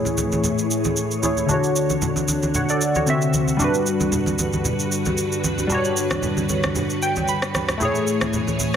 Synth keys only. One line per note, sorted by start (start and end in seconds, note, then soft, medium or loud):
0.00 1.18 A3 medium
0.00 1.19 E4 medium
0.00 1.20 G#4 medium
0.00 1.21 C#5 medium
1.22 1.49 A3 medium
1.22 1.49 E4 soft
1.22 1.50 G#4 medium
1.22 1.50 C#5 medium
1.46 3.03 D3 medium
1.46 3.04 D4 medium
1.51 2.53 F#4 medium
1.51 2.55 C#5 medium
2.55 2.69 C#5 medium
2.55 2.69 F#5 medium
2.70 2.95 A4 medium
2.70 2.94 D5 medium
2.96 3.07 F#4 medium
2.96 3.21 C#5 medium
3.06 3.59 D3 medium
3.06 3.60 C4 medium
3.06 3.60 F#4 medium
3.06 3.61 E5 medium
3.57 5.65 G3 medium
3.57 5.66 D4 medium
3.62 5.67 F#4 medium
3.62 5.68 B4 medium
5.67 7.75 G3 medium
5.67 7.77 D4 medium
5.72 7.78 F#4 medium
5.72 7.79 C#5 medium
7.02 7.27 G5 medium
7.29 7.77 B5 medium
7.78 8.76 A3 medium
7.78 8.76 E4 medium
7.82 8.76 G#4 medium
7.82 8.76 C#5 medium